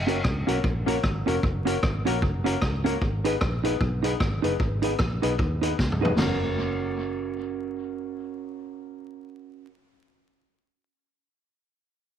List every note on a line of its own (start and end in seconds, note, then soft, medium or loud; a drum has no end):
0.00 0.26 F#1 loud
0.07 0.18 A#3 medium
0.07 0.17 C#4 medium
0.07 0.18 C#4 medium
0.07 0.17 F#4 medium
0.07 0.18 F#4 medium
0.07 0.19 A#4 loud
0.07 0.18 A#4 loud
0.07 closed hi-hat medium
0.24 0.44 C#2 loud
0.24 kick loud
0.24 cross-stick loud
0.47 0.62 B1 medium
0.47 0.58 A#3 medium
0.47 0.56 C#4 medium
0.47 0.58 C#4 medium
0.47 0.57 F#4 medium
0.47 0.58 F#4 medium
0.47 0.58 A#4 loud
0.47 0.57 A#4 medium
0.47 closed hi-hat medium
0.64 0.98 A#1 medium
0.64 kick loud
0.86 0.97 A#3 loud
0.86 0.97 C#4 medium
0.86 0.96 C#4 medium
0.86 0.97 F#4 medium
0.86 0.98 A#4 loud
0.86 0.97 A#4 medium
0.86 closed hi-hat loud
1.04 1.24 G#1 medium
1.04 kick loud
1.04 cross-stick loud
1.26 1.41 F1 medium
1.26 1.37 A#3 medium
1.26 1.36 C#4 medium
1.26 1.37 C#4 medium
1.26 1.36 F#4 medium
1.26 1.38 F#4 medium
1.26 1.36 A#4 medium
1.26 1.38 A#4 loud
1.26 closed hi-hat medium
1.43 1.77 F#1 loud
1.43 kick loud
1.65 1.76 A#3 medium
1.65 1.75 C#4 medium
1.65 1.77 C#4 medium
1.65 1.77 F#4 medium
1.65 1.76 F#4 medium
1.65 1.77 A#4 loud
1.65 1.76 A#4 medium
1.65 closed hi-hat loud
1.83 2.03 G#1 medium
1.83 kick loud
1.83 cross-stick loud
2.05 2.20 A#1 medium
2.05 2.16 A#3 loud
2.05 2.15 C#4 medium
2.05 2.17 C#4 medium
2.05 2.15 F#4 medium
2.05 2.17 F#4 medium
2.05 2.16 A#4 medium
2.05 2.17 A#4 loud
2.05 closed hi-hat loud
2.22 2.56 F#1 medium
2.22 kick loud
2.44 2.56 A#3 loud
2.44 2.54 C#4 medium
2.44 2.56 C#4 medium
2.44 2.55 F#4 medium
2.44 2.56 F#4 medium
2.44 2.55 A#4 medium
2.44 2.56 A#4 loud
2.44 closed hi-hat loud
2.62 2.96 C#2 medium
2.62 kick loud
2.62 cross-stick loud
2.84 2.95 A#3 loud
2.84 2.94 C#4 medium
2.84 2.96 C#4 medium
2.84 2.96 F#4 medium
2.84 2.95 F#4 medium
2.84 2.96 A#4 loud
2.84 2.95 A#4 medium
2.84 closed hi-hat medium
3.02 3.35 G#1 loud
3.02 kick loud
3.24 3.35 B3 medium
3.24 3.34 D#4 medium
3.24 3.35 D#4 medium
3.24 3.35 G#4 medium
3.24 3.34 G#4 medium
3.24 3.36 B4 loud
3.24 3.35 B4 medium
3.24 closed hi-hat medium
3.41 3.75 A#1 medium
3.41 kick loud
3.41 cross-stick loud
3.63 3.75 B3 loud
3.63 3.73 D#4 medium
3.63 3.75 D#4 medium
3.63 3.74 G#4 medium
3.63 3.75 G#4 medium
3.63 3.75 B4 loud
3.63 3.74 B4 medium
3.63 closed hi-hat medium
3.81 4.14 B1 loud
3.81 kick loud
4.03 4.14 B3 medium
4.03 4.13 D#4 medium
4.03 4.14 D#4 medium
4.03 4.13 G#4 medium
4.03 4.15 G#4 medium
4.03 4.15 B4 loud
4.03 4.14 B4 medium
4.03 closed hi-hat loud
4.20 4.40 G#1 medium
4.20 kick loud
4.20 cross-stick loud
4.42 4.58 F#1 medium
4.42 4.54 B3 medium
4.42 4.52 D#4 medium
4.42 4.54 D#4 medium
4.42 4.53 G#4 medium
4.42 4.54 G#4 medium
4.42 4.53 B4 medium
4.42 4.55 B4 loud
4.42 closed hi-hat medium
4.60 4.94 G#1 loud
4.60 kick loud
4.82 4.94 B3 medium
4.82 4.92 D#4 medium
4.82 4.94 D#4 medium
4.82 4.93 G#4 medium
4.82 4.94 G#4 medium
4.82 4.94 B4 loud
4.82 4.93 B4 medium
4.82 closed hi-hat medium
4.99 5.19 A#1 medium
4.99 kick loud
4.99 cross-stick loud
5.22 5.37 B1 medium
5.22 5.33 B3 medium
5.22 5.32 D#4 medium
5.22 5.33 D#4 medium
5.22 5.33 G#4 medium
5.22 5.32 G#4 medium
5.22 5.34 B4 loud
5.22 5.33 B4 medium
5.22 closed hi-hat medium
5.39 5.73 D#2 loud
5.39 kick loud
5.62 5.73 B3 medium
5.62 5.71 D#4 medium
5.62 5.73 D#4 medium
5.62 5.72 G#4 medium
5.62 5.73 G#4 medium
5.62 5.73 B4 loud
5.62 5.72 B4 loud
5.62 closed hi-hat loud
5.79 5.99 C#2 medium
5.79 kick loud
5.79 snare medium
5.92 mid tom medium
6.01 6.16 F1 medium
6.01 6.12 B3 medium
6.01 6.11 D#4 medium
6.01 6.13 D#4 medium
6.01 6.12 G#4 medium
6.01 6.13 G#4 medium
6.01 6.13 B4 loud
6.01 6.12 B4 medium
6.01 floor tom loud
6.17 9.23 F#1 loud
6.17 9.23 A#3 medium
6.17 9.67 C#4 medium
6.17 9.23 C#4 medium
6.17 9.23 F#4 medium
6.17 9.69 F#4 medium
6.17 9.24 A#4 medium
6.17 snare loud
6.17 floor tom medium
6.17 crash medium
6.21 9.71 A#4 loud